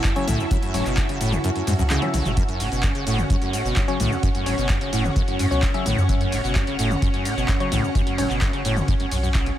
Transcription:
Already playing: C#4 E4 F#4 E5 A5
0.04 F#2, kick, clap, closed hi-hat, cabasa
0.16 C#3 F#3 C#4 C#5, closed hi-hat
0.27 B1 A2, open hi-hat, mid tom, ride, cabasa
0.39 E2, cabasa
0.51 F#2, kick, closed hi-hat, cabasa
0.62 F#2, closed hi-hat
0.74 F#1 A2 F#3 C#4 C#5, open hi-hat, ride, cabasa
0.85 F#1 B2, clap, closed hi-hat, cabasa
0.97 F#2, kick, clap, closed hi-hat, cabasa
1.09 C#3, closed hi-hat
1.21 A2, open hi-hat, ride, cabasa
1.32 E2, closed hi-hat, mid tom, cabasa
1.44 F#2, closed hi-hat, cabasa
1.56 F#2, closed hi-hat
1.67 F#2 G#2, open hi-hat, high tom, ride, cabasa
1.79 C#2 F#2, closed hi-hat, cabasa
1.90 C#2 C#3, clap, closed hi-hat, mid tom, cabasa
2.02 F#3 C#4 E5, closed hi-hat, mid tom
2.14 B1 C#3, open hi-hat, mid tom, ride, cabasa
2.25 F#1 A3, closed hi-hat, mid tom, cabasa
2.37 F#2 C#4 C#5, kick, closed hi-hat, cabasa
2.48 F#2, closed hi-hat
2.60 F#1 A2, open hi-hat, ride, cabasa
2.64 F#5
2.72 F#1 B2, closed hi-hat, cabasa
2.83 F#2, kick, clap, closed hi-hat, cabasa
2.95 C#3, closed hi-hat
3.07 A2, open hi-hat, ride, cabasa
3.18 E2, closed hi-hat, mid tom, cabasa
3.30 F#2, kick, closed hi-hat, cabasa
3.42 F#2, closed hi-hat
3.53 A2, open hi-hat, ride, cabasa
3.65 F#1 B2, cabasa
3.76 F#2, kick, clap, closed hi-hat, cabasa
3.88 C#3 F#3 C#4 C#5, closed hi-hat
4.00 B1 A2, open hi-hat, mid tom, ride, cabasa
4.11 E2, cabasa
4.23 F#2, kick, closed hi-hat, cabasa
4.35 F#2, closed hi-hat
4.46 F#1 A2 F#3 C#4 C#5, open hi-hat, ride, cabasa
4.58 F#1 B2, closed hi-hat, cabasa
4.69 F#2, kick, clap, closed hi-hat, cabasa
4.81 C#3, closed hi-hat
4.93 A2, open hi-hat, ride, cabasa
5.04 E2, closed hi-hat, mid tom, cabasa
5.16 F#2, kick, closed hi-hat, cabasa
5.28 F#2, closed hi-hat
5.39 F#2 A2, open hi-hat, ride, cabasa
5.51 C#2 B2 F#3 C#4 C#5, cabasa
5.62 F#2, kick, clap, closed hi-hat, cabasa
5.74 C#3 F#3 C#4 E5, closed hi-hat
5.86 A1 A2, open hi-hat, mid tom, ride, cabasa
5.97 E2 F#2, cabasa
6.09 F#2, kick, closed hi-hat, cabasa
6.21 F#2, closed hi-hat
6.32 F#1 A2, open hi-hat, ride, cabasa
6.44 F#1 B2, closed hi-hat, cabasa
6.55 F#2, kick, clap, closed hi-hat, cabasa
6.67 C#3, closed hi-hat
6.79 A2, open hi-hat, ride, cabasa
6.91 E2, closed hi-hat, mid tom, cabasa
7.02 F#2, kick, closed hi-hat, cabasa
7.14 F#2, closed hi-hat
7.25 A2, open hi-hat, ride, cabasa
7.37 F#1 B2, cabasa
7.48 F#2, kick, clap, closed hi-hat, cabasa
7.60 C#3 F#3 C#4 C#5, closed hi-hat
7.72 B1 A2, open hi-hat, mid tom, ride, cabasa
7.84 E2, cabasa
7.95 F#2, kick, closed hi-hat, cabasa
8.07 F#2, closed hi-hat
8.18 F#1 A2 F#3 C#4 C#5, open hi-hat, ride, cabasa
8.30 F#1 B2, clap, closed hi-hat, cabasa
8.41 F#2, kick, clap, closed hi-hat, cabasa
8.53 C#3, closed hi-hat
8.65 A2, open hi-hat, ride, cabasa
8.76 E2, closed hi-hat, mid tom, cabasa
8.88 F#2, kick, closed hi-hat, cabasa
9.00 F#2, closed hi-hat
9.11 B1 F#2, open hi-hat, ride, cabasa
9.23 F#2, cabasa
9.34 C#3, kick, clap, closed hi-hat, cabasa
9.46 F#2, closed hi-hat

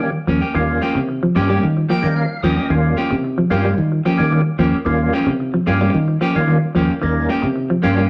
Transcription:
Already playing: G3 A#3 C#4 G4
0.00 D#3
0.27 D#2 F3 A#3 C#4, muted clean electric guitar stroke
0.41 A#3 C#4 G4
0.55 D#2 D#3 G3 A#3 C#4 F4
0.81 F3 A#3 C#4 G4
0.95 C3 C#3
1.23 F3
1.35 G2 F3 G3 A#3 C#4 G4
1.49 G3 A#3 C#4 G4
1.63 D#3
1.89 F3 A#3 G4 G5
2.02 D#3 G3 A#3 C#4 D#4
2.16 F5
2.43 D#2 F3 A#3 C#4 G4 D#5
2.57 A#3 C#4 G4
2.70 D#2 D#3 G3 A#3 C#4 F4
2.97 F3 A#3 C#4 G4
3.11 C3 C#3
3.38 F3
3.50 G2 F3 G3 A#3 C#4 F4 G4
3.65 G3
3.78 D#3
4.05 F3 A#3 C#4 G4
4.17 D#3 G3 A#3 C#4 G4
4.32 D#3
4.58 D#2 F3 A#3 C#4 G4
4.85 D#2 D#3 G3 A#3 C#4 F4
5.13 F3 A#3 C#4 G4
5.26 C3 C#3
5.54 F3
5.66 G2 F3 G3 A#3 C#4 F4 G4
5.81 G3 A#3 C#4 G4
5.94 D#3
6.21 F3 A#3 C#4 G4
6.35 D#3 G3 A#3 C#4 F4
6.48 D#3
6.75 D#2 F3 A#3 C#4 G4
7.02 D#2 D#3 G3 A#3 C#4 D#4
7.29 F3 A#3 C#4 G4
7.42 C3 C#3
7.70 F3
7.82 G2 F3 G3 A#3 C#4 F4 G4
7.96 G3 A#3 C#4 G4

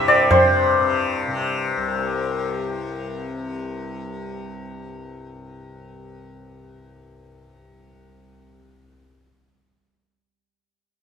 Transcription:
Already playing: C2 G2 C3 C5 E5
0.08 D5, tabla na
0.31 G2 C5, tabla na, tabla ge
0.80 C3
1.28 C3
1.77 C2

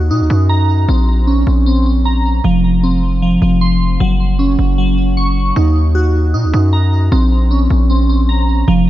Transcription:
Already playing: D#2 F#4
0.11 A#2 D#4
0.21 D#2
0.30 F#2 D#4
0.49 A#5
0.89 A#1 C4
1.27 C#4
1.47 A#1
1.66 C4
1.86 C4
2.05 A#5
2.44 F1 F3
2.83 C4
3.22 F3
3.42 F1 F3
3.61 C6
4.00 F#1 F#3
4.39 C#4
4.59 F#1
4.78 F#3
4.98 F#3
5.17 C#6
5.56 D#2 D#4
5.95 F#4
6.34 A#2 D#4
6.44 D#2
6.54 F#2 D#4
6.73 A#5
7.12 A#1 C4
7.51 C#4
7.70 A#1
7.90 C4
8.09 C4
8.29 A#5
8.68 F1 F3

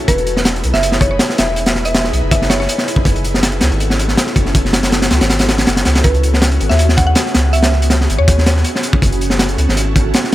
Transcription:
0.08 E1 D#4 E4 G#4 B4, kick, closed hi-hat
0.18 closed hi-hat
0.27 closed hi-hat
0.37 snare
0.45 snare, closed hi-hat
0.56 closed hi-hat
0.64 B1, closed hi-hat
0.74 F#1 E5, snare
0.83 closed hi-hat
0.92 snare
1.01 C#5, kick, closed hi-hat
1.11 C#5
1.19 snare, closed hi-hat
1.30 snare
1.38 E1 E5, snare, closed hi-hat
1.56 D#4 E4 G#4 B4, closed hi-hat
1.66 snare, closed hi-hat
1.75 snare
1.85 E5, closed hi-hat
1.95 snare, closed hi-hat
2.04 snare
2.13 B1, closed hi-hat
2.23 F#1
2.31 E5, kick, closed hi-hat
2.42 snare
2.50 C#5, snare, closed hi-hat
2.60 C#5, snare
2.69 closed hi-hat
2.78 snare
2.88 closed hi-hat
2.96 kick
3.05 F#1 C#4 E4 F#4 A4, kick, closed hi-hat
3.16 closed hi-hat
3.24 closed hi-hat
3.34 snare
3.43 snare, closed hi-hat
3.52 closed hi-hat
3.61 C#2, snare, closed hi-hat
3.71 G#1, closed hi-hat
3.80 closed hi-hat
3.90 snare
3.99 closed hi-hat
4.08 snare
4.17 snare, closed hi-hat
4.27 snare
4.36 F#1, kick, closed hi-hat
4.46 snare
4.55 C#4 E4 F#4 A4, kick, closed hi-hat
4.65 snare
4.73 snare, closed hi-hat
4.83 snare, closed hi-hat
4.92 snare, closed hi-hat
5.02 snare, closed hi-hat
5.11 C#2, snare, closed hi-hat
5.21 G#1, snare, closed hi-hat
5.30 snare, closed hi-hat
5.39 snare, closed hi-hat
5.49 snare, closed hi-hat
5.58 snare, closed hi-hat
5.67 F#1, snare, closed hi-hat
5.76 snare, closed hi-hat
5.85 C#2, snare, closed hi-hat
5.95 snare, closed hi-hat
6.04 C#2 B3 C#4 F#4 G#4 B4, kick, closed hi-hat
6.14 closed hi-hat
6.23 closed hi-hat
6.34 snare
6.42 snare, closed hi-hat
6.52 closed hi-hat
6.60 G#1, closed hi-hat
6.69 D#2 E5, snare
6.79 closed hi-hat
6.89 snare
6.97 F#5, kick, closed hi-hat
7.07 F#5
7.15 snare, closed hi-hat
7.26 snare
7.34 C#2, snare, closed hi-hat
7.53 B3 C#4 F#4 G#4 E5, closed hi-hat
7.63 snare, closed hi-hat
7.72 snare
7.82 closed hi-hat
7.90 snare, closed hi-hat
8.01 snare
8.09 G#1, closed hi-hat
8.18 D#2 C#5
8.28 kick, closed hi-hat
8.38 snare
8.46 snare, closed hi-hat
8.57 snare
8.64 closed hi-hat
8.76 snare
8.83 closed hi-hat
8.93 kick
9.02 F#1 C#4 E4 F#4 A4, kick, closed hi-hat
9.12 closed hi-hat
9.21 closed hi-hat
9.30 snare
9.39 snare, closed hi-hat
9.49 closed hi-hat
9.58 C#2, closed hi-hat
9.68 G#1, snare
9.77 closed hi-hat
9.96 kick, closed hi-hat
10.14 snare, closed hi-hat
10.24 snare

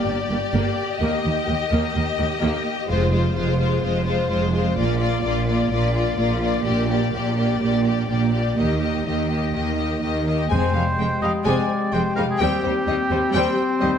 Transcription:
Already playing: G4 D5
0.06 G1 G2 A#3
0.30 G1 G2 A#3
0.53 G1 G2 A#3
1.00 D#2 A#3 D#5
1.23 D#2 A#3
1.47 D#2 A#3
1.71 D#2 A#3
1.95 D#2 A#3
2.18 D#2 A#3
2.41 D#2 A#3
2.88 F1 F2 G#3 F4 C5
3.13 G#3 F4 C5
3.35 F1 F2 G#3 F4 C5
3.59 G#3 F4 C5
3.83 F1 F2 G#3 F4 C5
4.07 G#3 F4 C5
4.29 F1 F2 G#3 F4 C5
4.54 G#3 F4 C5
4.77 A#1 A#2 A#3 F4 D5
5.00 A#3 F4 D5
5.23 A#1 A#2 A#3 F4 D5
5.48 A#3 F4 D5
5.71 A#1 A#2 A#3 F4 D5
5.95 A#3 F4 D5
6.18 A#1 A#2 A#3 F4 D5
6.42 A#3 F4 D5
6.65 A#1 A#2 A#3 G4 D5
6.89 A#3 G4 D5
7.13 A#1 A#2 A#3 G4 D5
7.37 A#3 G4 D5
7.60 A#1 A#2 A#3 G4 D5
7.84 A#3 G4 D5
8.08 A#1 A#2 A#3 G4 D5
8.32 A#3 G4 D5
8.56 D#2 D#3 A#3 G4 D#5
8.80 A#3 G4 D#5
9.05 D#2 D#3 A#3 G4 D#5
9.30 A#3 G4 D#5
9.54 D#2 D#3 A#3 G4 D#5
9.77 A#3 G4 D#5
10.01 D#2 D#3 A#3 G4 D#5
10.27 A#3 G4 D#5
10.49 F1 F2 G#3 C4 G4 C5 G5 G#5
10.73 F1 F2 G3 G#3 F5
10.98 F1 F2 G#3 G5
11.22 F1 F2 G3 G#3 D#5 F5
11.45 F1 F2 G#3 C4 D5 G#5
11.93 F1 F2 G#3 C5 G5
12.16 F1 F2 G3 G#3 A#4 F5
12.31 G#4
12.39 D#2 G3 C4 G4 G5
12.63 D#2 G3 C5
12.87 D#2 G3 D#5
13.11 D#2 G3 C5
13.34 D#2 G3 C4 C5 G5
13.81 D#2 G3 D#5

